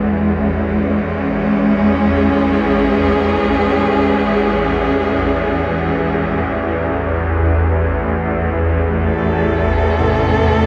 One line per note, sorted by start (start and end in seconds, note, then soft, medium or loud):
0.00 10.66 A1 medium
0.00 10.66 E2 medium
0.00 10.66 E3 medium
0.00 6.95 G#3 medium
0.00 3.26 E4 soft
0.25 6.95 C#4 medium
1.58 6.96 G#4 medium
7.69 10.66 A3 medium
9.04 10.66 A4 medium
9.55 10.66 C4 medium
10.00 10.66 A2 medium